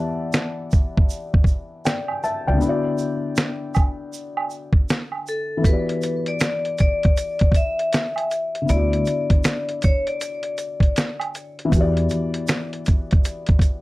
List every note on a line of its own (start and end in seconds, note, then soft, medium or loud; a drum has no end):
0.00 2.53 E3 medium
0.00 2.55 B3 medium
0.00 2.59 G4 medium
0.00 1.85 D5 medium
0.00 2.24 E5 medium
0.00 2.57 F#5 medium
0.00 2.24 A5 medium
0.33 finger snap medium
0.33 snare loud
0.33 shaker medium
0.71 kick medium
0.71 shaker soft
0.97 kick loud
1.10 shaker medium
1.34 kick loud
1.44 kick medium
1.44 shaker soft
1.85 2.22 D5 medium
1.85 2.21 G5 medium
1.85 finger snap medium
1.85 snare loud
1.85 shaker medium
2.08 high woodblock medium
2.24 2.46 E5 medium
2.24 2.46 A5 medium
2.24 shaker medium
2.47 2.60 C#2 medium
2.47 2.68 D5 medium
2.47 2.83 G5 medium
2.54 5.57 D3 medium
2.54 5.59 B3 medium
2.61 5.61 E4 medium
2.61 5.63 F#4 medium
2.61 shaker medium
2.69 5.65 D5 medium
2.98 shaker soft
3.36 finger snap medium
3.36 snare loud
3.36 shaker medium
3.75 kick medium
3.75 high woodblock medium
3.75 shaker soft
4.13 shaker medium
4.37 high woodblock medium
4.50 shaker soft
4.73 kick medium
4.89 finger snap medium
4.89 snare loud
4.89 shaker medium
5.12 high woodblock medium
5.27 5.67 A4 medium
5.27 shaker soft
5.57 8.61 E3 medium
5.57 8.63 B3 medium
5.64 8.65 F#4 medium
5.64 6.29 B4 medium
5.64 kick loud
5.64 closed hi-hat medium
5.64 shaker medium
5.69 8.67 G4 medium
5.69 8.69 D5 medium
5.89 closed hi-hat soft
6.02 closed hi-hat medium
6.02 shaker soft
6.26 6.79 D5 medium
6.26 closed hi-hat soft
6.40 finger snap medium
6.40 snare loud
6.40 closed hi-hat medium
6.40 shaker medium
6.65 closed hi-hat soft
6.78 7.58 D5 loud
6.78 kick medium
6.78 closed hi-hat medium
6.78 shaker soft
7.03 kick loud
7.03 closed hi-hat soft
7.17 closed hi-hat medium
7.17 shaker medium
7.39 kick loud
7.39 closed hi-hat medium
7.52 kick medium
7.52 closed hi-hat medium
7.52 shaker soft
7.56 8.73 E5 loud
7.79 closed hi-hat soft
7.93 finger snap medium
7.93 snare loud
7.93 closed hi-hat medium
7.93 shaker medium
8.16 closed hi-hat medium
8.16 high woodblock medium
8.31 closed hi-hat medium
8.31 shaker soft
8.55 closed hi-hat soft
8.62 11.65 D3 medium
8.62 11.67 B3 medium
8.69 9.03 D2 medium
8.69 11.69 E4 medium
8.69 9.86 D5 loud
8.69 closed hi-hat medium
8.69 shaker medium
8.73 11.71 F#4 medium
8.73 11.72 D5 medium
8.93 closed hi-hat soft
9.06 closed hi-hat medium
9.06 shaker soft
9.30 kick loud
9.30 closed hi-hat medium
9.44 finger snap medium
9.44 snare loud
9.44 closed hi-hat medium
9.44 shaker medium
9.69 closed hi-hat soft
9.82 10.05 C#5 medium
9.82 kick medium
9.82 closed hi-hat medium
9.82 shaker soft
10.07 11.17 D5 medium
10.07 closed hi-hat soft
10.21 closed hi-hat medium
10.21 shaker medium
10.43 closed hi-hat medium
10.58 closed hi-hat medium
10.58 shaker soft
10.80 kick medium
10.80 closed hi-hat soft
10.96 finger snap medium
10.96 snare loud
10.96 closed hi-hat medium
10.96 shaker medium
11.20 closed hi-hat soft
11.20 high woodblock soft
11.35 closed hi-hat medium
11.35 shaker medium
11.59 closed hi-hat soft
11.65 13.81 E3 medium
11.65 13.81 B3 medium
11.72 12.06 E2 medium
11.72 13.81 F#4 medium
11.72 kick loud
11.72 closed hi-hat medium
11.72 shaker medium
11.77 13.81 G4 medium
11.77 13.81 D5 medium
11.97 closed hi-hat soft
12.10 closed hi-hat medium
12.10 shaker soft
12.34 closed hi-hat medium
12.48 finger snap medium
12.48 snare loud
12.48 closed hi-hat medium
12.48 shaker medium
12.73 closed hi-hat soft
12.86 kick medium
12.86 closed hi-hat medium
12.86 shaker soft
13.11 kick loud
13.11 closed hi-hat soft
13.25 closed hi-hat medium
13.25 shaker medium
13.46 kick loud
13.46 closed hi-hat medium
13.59 kick medium
13.59 closed hi-hat medium
13.59 shaker soft